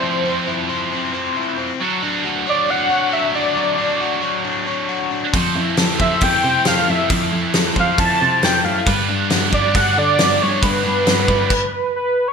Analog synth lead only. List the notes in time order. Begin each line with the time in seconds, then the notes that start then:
Already playing: C5
2.49 D5
2.70 F#5
3.13 E5
3.35 D5
6.01 E5
6.23 G5
6.67 F5
6.90 E5
7.79 F5
8.00 A5
8.44 G5
8.65 F5
9.53 D5
9.76 F#5
9.98 D5
10.42 C#5
10.64 B4
11.96 B4
12.28 C#5